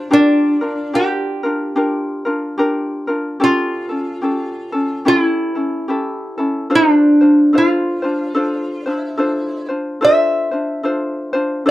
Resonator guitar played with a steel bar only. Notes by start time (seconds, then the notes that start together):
Already playing: D4
0.13 D4
0.95 G4
3.44 F4
5.08 F4
5.19 E4
6.75 D4
7.58 F4
8.91 E4
10.04 E5